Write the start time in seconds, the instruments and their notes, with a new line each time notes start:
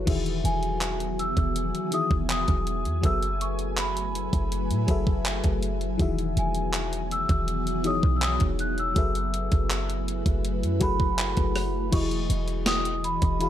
0.05 808-style bass E1, fm electric piano D#3 E3 F#4 G#4, ambient pad F#3 B3 F#4 G#5, kick, closed hi-hat, crash
0.09 fm electric piano E5
0.26 closed hi-hat
0.44 808-style bass E1, celesta G#5, closed hi-hat
0.63 closed hi-hat
0.81 clap, closed hi-hat
1.00 closed hi-hat
1.19 celesta E6, closed hi-hat
1.37 808-style bass E1, kick, closed hi-hat
1.56 closed hi-hat
1.75 closed hi-hat
1.90 fm electric piano D#3 E3 F#4 G#4 E5, celesta D#6, closed hi-hat
2.11 808-style bass E1, kick
2.30 celesta D#6, clap, closed hi-hat
2.48 808-style bass E1, kick, closed hi-hat
2.67 closed hi-hat
2.85 808-style bass E2, closed hi-hat
3.02 808-style bass F#1, fm electric piano F#3 F#4 G#4 A4 B4, ambient pad F#3 A3 E4 B4, celesta E6, kick, closed hi-hat
3.06 fm electric piano E5
3.23 closed hi-hat
3.41 celesta C#6, closed hi-hat
3.59 closed hi-hat
3.77 celesta B5, clap, closed hi-hat
3.97 closed hi-hat
4.15 closed hi-hat
4.33 808-style bass F#1, kick, closed hi-hat
4.52 closed hi-hat
4.70 808-style bass A2, closed hi-hat
4.87 808-style bass F#1, fm electric piano F#3 F#4 G#4 A4 B4 E5, kick, closed hi-hat
5.07 kick
5.25 clap, closed hi-hat
5.44 808-style bass F#1, kick, closed hi-hat
5.63 closed hi-hat
5.81 closed hi-hat
5.98 808-style bass E1, fm electric piano D#3 E3 F#4 G#4, ambient pad F#3 B3 F#4, kick, closed hi-hat
6.02 fm electric piano E5
6.19 closed hi-hat
6.37 808-style bass E1, celesta G#5, closed hi-hat
6.55 closed hi-hat
6.73 clap, closed hi-hat
6.93 closed hi-hat
7.11 celesta E6, closed hi-hat
7.29 808-style bass E1, kick, closed hi-hat
7.48 closed hi-hat
7.67 closed hi-hat
7.83 fm electric piano E3 D#4 F#4 G#4, celesta D#6, closed hi-hat
7.87 fm electric piano C#5
8.03 808-style bass B1, kick
8.16 celesta E6
8.22 celesta D#6, clap, closed hi-hat
8.40 808-style bass E1, kick, closed hi-hat
8.59 celesta F#6, closed hi-hat
8.78 celesta E6, closed hi-hat
8.94 808-style bass F#1, fm electric piano F#3 F#4 G#4 A4 B4, ambient pad F#3 A3 E4 B4, kick, closed hi-hat
8.98 fm electric piano E5
9.15 closed hi-hat
9.34 closed hi-hat
9.52 808-style bass F#1, kick, closed hi-hat
9.70 clap, closed hi-hat
9.90 closed hi-hat
10.08 closed hi-hat
10.26 808-style bass F#1, kick, closed hi-hat
10.45 closed hi-hat
10.63 808-style bass F#2, closed hi-hat
10.80 808-style bass F#1, fm electric piano F#3 F#4 G#4 A4 B4, celesta B5, kick, closed hi-hat
10.84 fm electric piano F#5
11.00 kick
11.19 clap, closed hi-hat
11.37 808-style bass F#1, kick, closed hi-hat
11.55 cross-stick, open hi-hat
11.91 808-style bass E1, fm electric piano E3 E4 F#4 G4, ambient pad E3 F#4 D#5 G#5, celesta C#6, kick, closed hi-hat, crash
11.95 fm electric piano D#5
12.01 fm electric piano G#4
12.11 closed hi-hat
12.30 808-style bass E1, closed hi-hat
12.48 closed hi-hat
12.66 celesta D#6, snare, closed hi-hat
12.85 closed hi-hat
13.04 celesta B5, closed hi-hat
13.22 808-style bass E1, kick, closed hi-hat
13.39 fm electric piano E3 E4 F#4 G#4 F5, celesta B5, closed hi-hat